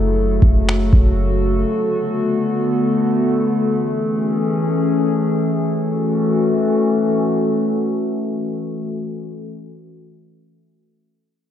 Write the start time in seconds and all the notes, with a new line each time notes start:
Already playing: F#1 C#3 F#3 A3 F#4 A4
0.42 F#1, kick
0.69 finger snap
0.93 F#1, kick
1.68 D3 A3 B3
3.68 E3 C#4 G#4
5.67 E3 A3 C#4 F#4 A4